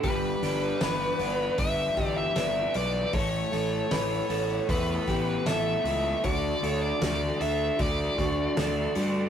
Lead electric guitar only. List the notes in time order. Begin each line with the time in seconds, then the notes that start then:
0.04 B4
1.59 E5
2.06 D5
2.18 E5
2.76 D5
3.14 C#5
4.70 B4
5.46 E5
6.25 D5
6.68 C#5
6.82 D5
7.42 E5
7.82 D5